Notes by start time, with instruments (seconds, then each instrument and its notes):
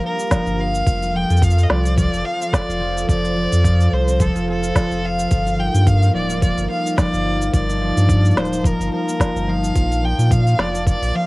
Already playing: ambient pad G3 D4 G4 A#4, harp A#3 D4 F4
0.03 harp F3, violin A#4
0.19 harp D4, shaker
0.31 harp F3, kick, snare, open hi-hat, shaker
0.46 sub bass G1, harp F4, shaker
0.59 harp F3, violin F5
0.74 harp A#3, shaker
0.86 sub bass F1, harp F3, ambient pad F3 F4 A4 C5, kick, open hi-hat, shaker
1.02 harp F4, open hi-hat, shaker
1.14 harp F3, violin G5
1.30 sub bass F2, harp A4, open hi-hat, shaker
1.37 shaker
1.42 harp F3, violin F5, kick, open hi-hat, shaker
1.51 shaker
1.57 harp C4, open hi-hat, shaker
1.63 violin D#5
1.70 sub bass C2, harp F3, violin D5, snare
1.85 harp F4, open hi-hat, shaker
1.97 harp F3, violin D5, kick, open hi-hat, shaker
2.13 sub bass F1, harp A4, open hi-hat, shaker
2.25 harp F3, violin F5
2.41 harp C4, shaker
2.53 harp F3, violin D5, kick, snare, open hi-hat, shaker
2.69 sub bass F1, harp F4, shaker
2.80 harp F3
2.96 harp A4, shaker
3.08 sub bass F1, harp F3, violin D5, kick, open hi-hat, shaker
3.23 harp C4, open hi-hat, shaker
3.36 harp F3
3.52 sub bass F2, harp F4, open hi-hat, shaker
3.64 harp F3, kick, open hi-hat, shaker
3.80 harp A4, open hi-hat, shaker
3.92 sub bass C2, harp F3, violin C5
4.08 harp C4, open hi-hat, shaker
4.20 harp F3, violin A4, kick, open hi-hat, shaker
4.35 sub bass F1, harp F4, open hi-hat, shaker
4.48 harp C4, violin A4
4.63 harp F4, shaker
4.75 harp F3, kick, snare, open hi-hat, shaker
4.91 sub bass F1, harp C4, shaker
5.03 harp F4, violin F5
5.19 harp A4, open hi-hat, shaker
5.31 sub bass G1, harp F3, ambient pad G3 D#4 F4 A#4, kick, open hi-hat, shaker
5.46 harp F4, open hi-hat, shaker
5.58 harp F3, violin G5
5.74 sub bass G2, harp A#3, open hi-hat, shaker
5.86 harp F3, violin F5, kick, open hi-hat, shaker
6.02 harp D#4, open hi-hat, shaker
6.14 sub bass D1, harp F3, violin D5
6.30 harp F4, open hi-hat, shaker
6.42 harp F3, violin D5, kick, open hi-hat, shaker
6.57 sub bass G1, harp A#3, open hi-hat, shaker
6.69 harp F3, violin F5
6.85 harp D#4, shaker
6.97 harp F3, violin D5, kick, snare, open hi-hat, shaker
7.13 sub bass G1, harp F4, shaker
7.25 harp F3
7.41 harp A#3, shaker
7.53 sub bass G1, harp F3, violin D5, ambient pad A5, kick, open hi-hat, shaker
7.69 harp D#4, open hi-hat, shaker
7.81 harp F3
7.97 sub bass G2, harp F4, open hi-hat, shaker
8.09 harp F3, kick, open hi-hat, shaker
8.25 harp A#3, open hi-hat, shaker
8.31 open hi-hat
8.37 sub bass D1, harp F3, violin C5, snare, open hi-hat
8.45 open hi-hat
8.52 harp D#4, open hi-hat, shaker
8.64 harp F3, violin A#4, kick, open hi-hat, shaker
8.80 sub bass G1, harp F4, open hi-hat, shaker
8.92 harp F3, violin A#4
9.08 harp A#3, shaker
9.20 harp F3, kick, snare, open hi-hat, shaker
9.35 sub bass G1, harp D#4, shaker
9.47 harp F3, violin F5
9.63 harp F4, shaker
9.75 sub bass A#1, harp F3, ambient pad A#3 D5, kick, open hi-hat, shaker
9.91 harp A#3, open hi-hat, shaker
10.03 harp F3, violin G5
10.18 sub bass A#2, harp D4, open hi-hat, shaker
10.30 harp F3, violin F5, kick, open hi-hat, shaker
10.46 harp F4, open hi-hat, shaker
10.58 sub bass F1, harp F3, violin D5, snare
10.74 harp A#3, open hi-hat, shaker
10.87 harp F3, violin D5, kick, open hi-hat, shaker
11.02 sub bass A#1, harp D4, open hi-hat, shaker
11.04 open hi-hat
11.11 harp F3, open hi-hat
11.15 violin F5